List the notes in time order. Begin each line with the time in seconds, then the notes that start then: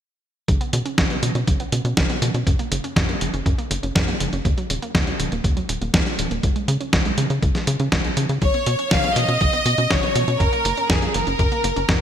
0.48 B1 C#3, kick, closed hi-hat
0.61 B3, closed hi-hat
0.73 B2 C#3, closed hi-hat
0.86 C#4, closed hi-hat
0.98 B1 C#3, kick, snare, closed hi-hat
1.10 B3, closed hi-hat
1.23 B2 C#3, closed hi-hat
1.35 B2 C#4, closed hi-hat
1.47 B1 C#3, kick, closed hi-hat
1.60 B3, closed hi-hat
1.72 B2 C#3, closed hi-hat
1.85 B2 C#4, closed hi-hat
1.97 B1 C#3, kick, snare, closed hi-hat
2.10 B3, closed hi-hat
2.22 B2 C#3, closed hi-hat
2.34 B2 C#4, closed hi-hat
2.47 F#2 C#3, kick, closed hi-hat
2.59 A#3, closed hi-hat
2.72 F#1 C#3, closed hi-hat
2.84 C#4, closed hi-hat
2.96 F#2 C#3, kick, snare, closed hi-hat
3.09 A#3, closed hi-hat
3.21 F#1 C#3, closed hi-hat
3.33 F#1 C#4, closed hi-hat
3.46 F#2 C#3, kick, closed hi-hat
3.58 A#3, closed hi-hat
3.71 F#1 C#3, closed hi-hat
3.83 F#1 C#4, closed hi-hat
3.95 F#2 C#3, kick, snare, closed hi-hat
4.08 A#3, closed hi-hat
4.20 F#1 C#3, closed hi-hat
4.33 F#1 C#4, closed hi-hat
4.45 D#2 C#3, kick, closed hi-hat
4.58 F#3, closed hi-hat
4.70 D#1 C#3, closed hi-hat
4.82 A#3, closed hi-hat
4.95 D#2 C#3, kick, snare, closed hi-hat
5.07 F#3, closed hi-hat
5.19 D#1 C#3, closed hi-hat
5.32 D#1 A#3, closed hi-hat
5.44 D#2 C#3, kick, closed hi-hat
5.57 F#3, closed hi-hat
5.69 D#1 C#3, closed hi-hat
5.81 D#1 A#3, closed hi-hat
5.94 D#2 C#3, kick, snare, closed hi-hat
6.06 F#3, closed hi-hat
6.19 D#1 C#3, closed hi-hat
6.31 D#1 A#3, closed hi-hat
6.43 C#2 C#3, kick, closed hi-hat
6.56 G#3, closed hi-hat
6.68 C#3, closed hi-hat
6.80 C#4, closed hi-hat
6.93 C#2 C#3, kick, snare, closed hi-hat
7.05 G#3, closed hi-hat
7.18 C#3, closed hi-hat
7.30 C#3 C#4, closed hi-hat
7.43 C#2 C#3, kick, closed hi-hat
7.55 G#3, snare, closed hi-hat
7.67 C#3, closed hi-hat
7.80 C#3 C#4, closed hi-hat
7.92 C#2 C#3, kick, snare, closed hi-hat
8.04 G#3, closed hi-hat
8.17 C#3, closed hi-hat
8.29 C#3 C#4, closed hi-hat
8.42 B1 C#3 C#5, kick, closed hi-hat
8.54 B3, closed hi-hat
8.66 B2 B3, closed hi-hat
8.79 C#4, closed hi-hat
8.91 B1 C#3 F5, kick, snare, closed hi-hat
9.04 B3, closed hi-hat
9.16 B2 B3 D#5, closed hi-hat
9.28 B2 C#4, closed hi-hat
9.41 B1 C#3, kick, closed hi-hat
9.53 B3, closed hi-hat
9.66 B2 B3, closed hi-hat
9.78 B2 C#4, closed hi-hat
9.91 B1 C#3 C#5, kick, snare, closed hi-hat
10.03 B3, closed hi-hat
10.15 B2 B3, closed hi-hat
10.28 B2 C#4, closed hi-hat
10.40 F#2 C#3 A#4, kick, closed hi-hat
10.53 A#3, closed hi-hat
10.65 F#1 A#3, closed hi-hat
10.77 C#4, closed hi-hat
10.90 F#2 C#3 G#4, kick, snare, closed hi-hat
11.02 A#3, closed hi-hat
11.14 F#1 A#3 A#4, closed hi-hat
11.27 F#1 C#4, closed hi-hat
11.39 F#2 C#3, kick, closed hi-hat
11.52 A#3, closed hi-hat
11.64 F#1 A#3, closed hi-hat
11.76 F#1 C#4, closed hi-hat
11.89 F#2 C#3, kick, snare, closed hi-hat